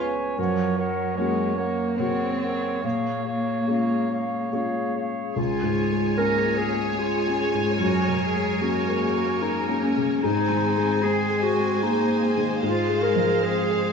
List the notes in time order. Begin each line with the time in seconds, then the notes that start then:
Already playing: C#2 B3 C#4 G#4 B4
0.00 C#5 G#5
0.38 F#2 F3 A#4 C#5 F#5
0.78 F#3 A#4 C#5 F#5
1.17 G#3 A#3 C#4 F#4 A#4 C#5 F#5
1.57 A#3 A#4 C#5 F#5
1.97 C#3 A#3 C4 F#4 A#4 C#5 F#5
2.41 A#4 C#5 F#5
2.83 A#2 A#3 G#4 C#5 F5
3.25 G#4 C#5 F5
3.67 G#3 C#4 F4 G#4 C#5 F5
4.10 G#4 C#5 F5
4.52 G#3 C#4 F4 G#4 C#5 F5
4.95 G#4 C#5 F5
5.36 C#2 G#3 F4 G#4 C#5 G#5
5.62 G#2
5.91 G#3
6.18 A#3 C#4 A#4
6.45 F4
6.58 G#4
6.73 G#4
6.99 G#3 F4
7.27 C#4
7.54 G#2
7.79 F#2 F#3 F#4 A#4
8.08 C#3
8.22 G#4
8.34 G#3
8.61 A#3 C#4 F#4
8.89 A#4
9.15 G#4
9.42 D#4 A#4
9.69 C#4
9.84 C#4
9.97 C#3
10.22 G#2 G#3 C4 D#4 G#4 C5 G#5
10.50 D#3
10.77 G#3
11.03 G#3 C4 G#4
11.29 G#4
11.43 F#4
11.56 C4
11.83 A#3 D#4 G#4
12.10 C4
12.37 D#3
12.63 G#2 G#3 F4 F5
12.89 G#3
13.03 A#4
13.16 F3
13.43 C4 G#4
13.70 G#4